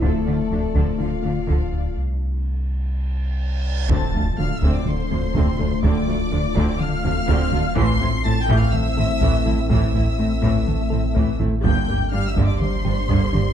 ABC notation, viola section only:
X:1
M:4/4
L:1/8
Q:1/4=124
K:Dm
V:1 name="Viola section"
[F,A] [F,F] [F,D] [F,A] [F,F] [F,D] [F,A] z | z8 | [D,C] [A,F] [F,D] [D,C] z [F,D] [D,C] [A,F] | [D,C] [A,F] [F,D] [D,C] z [F,D] [D,C] [A,F] |
[E,A,] [CE] [A,C] [E,A,] z [A,C] [E,A,] [CE] | [E,A,] [CE] [A,C] [E,A,] z [A,C] [E,A,] [CE] | [D,B,] [B,G] [G,D] [D,B,] z [G,D] [D,B,] [B,G] |]